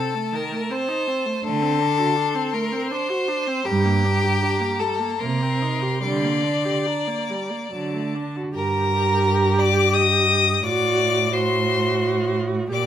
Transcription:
0.00 0.16 C4 medium
0.00 0.37 A4 loud
0.00 1.40 A5 medium
0.14 0.34 A3 medium
0.33 0.54 D#3 medium
0.33 0.73 A#4 medium
0.52 0.72 A3 medium
0.70 0.90 C4 medium
0.70 1.45 C5 loud
0.88 1.09 D#4 medium
1.07 1.27 C4 medium
1.25 1.43 A3 medium
1.43 2.04 D3 medium
1.43 1.63 A3 medium
1.43 2.55 A4 loud
1.43 3.63 C6 medium
1.62 1.82 C4 medium
1.80 2.00 D4 medium
1.98 2.17 F#4 medium
2.16 2.36 D4 medium
2.35 2.54 C4 medium
2.53 2.74 A3 medium
2.53 2.90 A#4 loud
2.72 2.93 C4 medium
2.90 3.11 D4 medium
2.90 3.67 C5 loud
3.09 3.29 F#4 medium
3.28 3.49 D4 medium
3.47 3.66 C4 medium
3.65 4.29 G2 medium
3.65 3.87 G3 medium
3.65 4.81 G4 loud
3.65 5.20 A#5 medium
3.86 4.06 A#3 medium
4.05 4.25 D4 medium
4.23 4.43 G4 medium
4.42 4.62 D4 medium
4.60 4.81 A#3 medium
4.79 5.01 G3 medium
4.79 5.21 A4 medium
4.99 5.20 A#3 medium
5.19 5.89 C3 medium
5.19 5.43 A#3 medium
5.19 6.02 A#4 medium
5.19 6.88 C6 medium
5.42 5.64 C4 medium
5.62 5.83 D#4 medium
5.81 6.02 G4 medium
6.02 6.73 D3 medium
6.02 6.25 G3 medium
6.02 8.11 D5 medium
6.24 6.46 A#3 medium
6.44 6.67 D4 medium
6.65 6.88 G4 medium
6.86 7.09 D4 medium
6.86 7.72 A#5 medium
7.08 7.32 A#3 medium
7.30 7.52 G3 medium
7.50 7.72 A#3 soft
7.72 8.42 D3 medium
7.72 7.95 F#3 medium
7.72 8.33 A5 soft
7.94 8.16 A3 medium
8.15 8.37 D4 soft
8.36 8.54 F#4 medium
8.54 10.60 G2 medium
8.54 10.60 G4 medium
8.54 9.61 A#4 loud
8.54 9.60 A#5 loud
9.59 9.96 D5 medium
9.59 9.94 D6 loud
9.93 10.64 D#5 loud
9.93 10.64 D#6 loud
10.63 12.66 A2 medium
10.63 11.32 F#4 medium
10.63 11.34 D5 loud
10.63 11.34 D6 loud
11.32 12.68 F#4 medium
11.32 12.36 C5 medium
11.32 12.36 C6 loud
12.71 12.86 A#2 medium
12.71 12.86 G4 medium
12.71 12.86 D5 loud
12.71 12.86 D6 loud

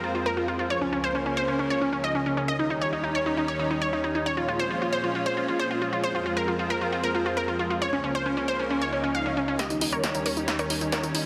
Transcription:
0.00 0.69 F2 medium
0.00 2.45 F3 medium
0.00 0.67 G#3 medium
0.00 0.69 C4 medium
0.00 0.13 F4 medium
0.15 0.24 F4 medium
0.26 0.35 A#4 medium
0.37 0.46 F4 medium
0.48 0.57 F4 medium
0.59 0.68 F4 medium
0.70 2.46 C#2 medium
0.70 2.46 C#3 medium
0.70 2.46 A#3 medium
0.70 0.80 C#5 medium
0.81 0.91 C#4 medium
0.93 1.02 C#4 medium
1.04 1.13 C5 medium
1.15 1.24 C#4 medium
1.26 1.35 C#4 medium
1.37 1.46 C5 medium
1.48 1.57 C#4 medium
1.59 1.68 C#4 medium
1.70 1.80 C#5 medium
1.81 1.91 C#4 medium
1.93 2.02 C#4 medium
2.04 2.13 D#5 medium
2.15 2.24 C#4 medium
2.26 2.35 C#4 medium
2.37 2.46 C#4 medium
2.48 4.24 D#2 medium
2.48 4.24 D#3 medium
2.48 4.24 G3 medium
2.48 4.24 C#4 medium
2.48 2.57 D#5 loud
2.59 2.68 D#4 medium
2.70 2.80 D#4 medium
2.81 2.91 C#5 medium
2.93 3.02 D#4 medium
3.04 3.13 D#4 medium
3.15 3.24 C#5 medium
3.26 3.35 D#4 medium
3.37 3.46 D#4 medium
3.48 3.57 C#5 medium
3.59 3.69 D#4 medium
3.71 3.80 D#4 medium
3.82 3.91 C#5 medium
3.93 4.02 D#4 medium
4.04 4.13 D#4 medium
4.15 4.24 D#4 medium
4.26 6.02 A#2 medium
4.26 9.55 F3 medium
4.26 7.78 G#3 medium
4.26 6.02 C#4 medium
4.26 4.35 C#5 loud
4.37 4.46 F4 medium
4.49 4.58 F4 medium
4.59 4.69 C5 medium
4.71 4.80 F4 medium
4.82 4.91 F4 medium
4.93 5.02 C5 medium
5.04 5.13 F4 medium
5.15 5.24 F4 medium
5.26 5.35 C5 medium
5.37 5.46 F4 medium
5.48 5.57 F4 medium
5.59 5.69 C5 medium
5.71 5.80 F4 medium
5.82 5.91 F4 medium
5.93 6.02 F4 medium
6.04 7.80 F2 medium
6.04 7.80 C4 medium
6.04 6.13 C5 loud
6.15 6.24 F4 medium
6.26 6.35 F4 medium
6.37 6.46 A#4 medium
6.48 6.57 F4 medium
6.59 6.68 F4 medium
6.70 6.79 A#4 medium
6.81 6.91 F4 medium
6.92 7.02 F4 medium
7.04 7.13 A#4 medium
7.15 7.24 F4 medium
7.26 7.35 F4 medium
7.37 7.46 A#4 medium
7.48 7.57 F4 medium
7.59 7.68 F4 medium
7.70 7.80 F4 medium
7.81 9.57 C#2 medium
7.81 9.57 C#3 medium
7.81 9.57 A#3 medium
7.81 7.91 C#5 loud
7.93 8.02 C#4 medium
8.04 8.13 C#4 medium
8.15 8.24 C5 medium
8.26 8.35 C#4 medium
8.37 8.46 C#4 medium
8.48 8.57 C5 medium
8.59 8.69 C#4 medium
8.70 8.80 C#4 medium
8.70 swell medium
8.82 8.91 C#5 medium
8.93 9.02 C#4 medium
9.04 9.13 C#4 medium
9.15 9.24 F5 medium
9.26 9.35 C#4 medium
9.37 9.46 C#4 medium
9.48 9.57 C#4 medium
9.59 11.26 D#2 medium
9.59 11.26 D#3 medium
9.59 11.26 G3 medium
9.59 11.26 C#4 medium
9.59 9.68 G4 medium
9.59 9.68 D#5 loud
9.59 snare soft
9.59 closed hi-hat medium
9.59 riser medium
9.70 9.80 D#4 medium
9.70 closed hi-hat soft
9.81 9.91 D#4 medium
9.81 open hi-hat loud
9.92 10.02 A#4 medium
9.92 10.02 C#5 medium
9.92 closed hi-hat soft
10.04 10.13 D#4 medium
10.04 snare soft
10.04 closed hi-hat medium
10.15 10.24 D#4 medium
10.15 closed hi-hat soft
10.26 10.35 A#4 medium
10.26 10.35 C#5 medium
10.26 open hi-hat medium
10.37 10.46 D#4 medium
10.37 closed hi-hat soft
10.48 10.57 D#4 medium
10.48 snare medium
10.48 closed hi-hat medium
10.59 10.68 A#4 medium
10.59 10.68 C#5 medium
10.59 closed hi-hat soft
10.70 10.79 D#4 medium
10.70 open hi-hat loud
10.81 10.91 D#4 medium
10.81 closed hi-hat soft
10.92 11.02 A#4 medium
10.92 11.02 C#5 medium
10.92 snare medium
10.92 closed hi-hat medium
11.03 11.13 D#4 medium
11.03 closed hi-hat soft
11.15 11.24 D#4 medium
11.15 open hi-hat medium

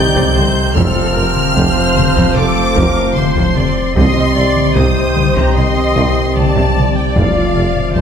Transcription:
0.00 0.77 C2 medium
0.00 3.79 C3 loud
0.00 0.72 D#3 loud
0.00 3.92 C4 loud
0.00 0.72 G4 loud
0.00 1.52 A4 medium
0.00 0.36 D5 medium
0.00 0.72 G6 loud
0.00 0.76 G6 loud
0.16 0.24 C3 loud
0.16 0.28 C3 loud
0.16 taiko loud
0.35 0.44 C2 medium
0.35 0.44 C3 medium
0.35 0.48 G3 medium
0.35 0.76 C5 loud
0.35 taiko mid medium
0.76 0.83 F1 loud
0.76 3.97 F1 loud
0.76 0.84 F1 loud
0.76 0.84 F2 loud
0.76 3.79 F3 loud
0.76 0.88 F3 loud
0.76 1.15 A4 loud
0.76 3.92 C5 loud
0.76 2.33 F6 loud
0.76 2.36 F6 loud
0.76 taiko loud
0.96 1.04 F2 medium
0.96 1.08 F4 medium
1.15 1.23 F1 medium
1.15 1.24 F1 medium
1.15 1.24 F2 medium
1.15 1.28 F4 medium
1.15 1.56 A#4 medium
1.37 taiko mid medium
1.55 1.64 F1 loud
1.55 1.64 F2 loud
1.55 1.68 F3 loud
1.55 2.34 C5 loud
1.55 taiko medium
1.76 1.85 F2 medium
1.76 1.88 F4 medium
1.96 2.04 F1 medium
1.96 2.04 F2 medium
1.96 2.08 C4 medium
1.96 taiko mid medium
2.16 2.24 F2 loud
2.16 2.28 F3 loud
2.16 taiko medium
2.35 2.44 F1 medium
2.35 2.44 F2 medium
2.35 2.48 A3 medium
2.35 2.76 A4 loud
2.35 3.16 D6 loud
2.56 2.64 F2 medium
2.56 2.68 A3 medium
2.76 2.84 F1 loud
2.76 2.85 F1 loud
2.76 2.85 F2 loud
2.76 2.88 F3 loud
2.76 3.16 A#4 loud
2.76 taiko loud
3.15 3.24 F1 medium
3.15 3.24 F2 medium
3.15 3.28 F4 medium
3.15 3.55 C5 medium
3.15 5.52 C5 medium
3.15 3.94 C6 loud
3.15 3.94 C6 medium
3.15 taiko mid medium
3.36 3.44 F2 loud
3.36 3.48 F3 loud
3.36 taiko loud
3.55 3.64 F1 medium
3.55 3.64 F2 medium
3.55 3.68 C4 medium
3.55 3.96 D5 medium
3.55 taiko mid medium
3.95 7.16 C2 medium
3.95 4.04 C2 loud
3.95 8.01 C3 medium
3.95 4.08 C3 loud
3.95 4.05 C3 loud
3.95 7.12 D#3 medium
3.95 7.12 C4 medium
3.95 7.16 G4 medium
3.95 4.35 D#5 loud
3.95 4.74 C6 loud
3.95 4.75 C6 loud
3.95 taiko loud
4.16 4.25 C3 medium
4.16 4.28 C4 medium
4.35 4.44 C2 medium
4.35 4.45 C3 medium
4.35 4.48 C4 medium
4.35 4.75 D5 loud
4.56 taiko mid medium
4.75 4.84 C2 medium
4.75 4.88 C3 loud
4.75 4.84 C3 loud
4.75 5.56 C5 loud
4.75 5.35 D#6 loud
4.75 taiko medium
4.96 5.05 C3 medium
4.96 5.08 C4 medium
5.16 5.24 C2 medium
5.16 5.24 C3 medium
5.16 5.28 G3 medium
5.16 taiko mid medium
5.36 5.48 C3 loud
5.36 5.44 C3 loud
5.36 5.56 A#5 loud
5.36 taiko medium
5.55 5.64 C2 medium
5.55 5.64 C3 medium
5.55 5.68 D#3 medium
5.55 6.36 D#5 loud
5.55 6.35 C6 loud
5.55 6.34 C6 medium
5.76 5.84 C3 medium
5.76 5.88 D#3 medium
5.96 6.04 C2 loud
5.96 6.04 C2 medium
5.96 6.08 C3 loud
5.96 6.04 C3 medium
5.96 taiko medium
6.36 6.44 C2 medium
6.36 6.44 C3 medium
6.36 6.48 C4 medium
6.36 7.93 D5 loud
6.36 6.96 A5 loud
6.36 6.96 A5 medium
6.36 taiko mid medium
6.56 6.68 C3 loud
6.56 6.64 C3 loud
6.56 taiko medium
6.76 6.84 C2 medium
6.76 6.84 C3 medium
6.76 6.88 G3 medium
6.76 taiko mid medium
6.96 7.16 G5 medium
7.15 8.01 F1 medium
7.15 7.24 F1 medium
7.15 7.24 F2 medium
7.15 7.28 F3 loud
7.15 8.01 F3 medium
7.15 8.01 A3 medium
7.15 8.01 F4 medium
7.15 7.94 F5 loud
7.15 7.96 F5 medium
7.15 taiko loud
7.36 7.44 F2 medium
7.36 7.48 F4 medium
7.56 7.64 F1 medium
7.56 7.64 F2 medium
7.56 7.68 F4 medium
7.76 taiko mid medium
7.95 8.01 F1 medium
7.95 8.01 F2 medium
7.95 8.01 F3 loud
7.95 8.01 C5 medium
7.95 8.01 A5 loud
7.95 8.01 A5 medium
7.95 taiko medium

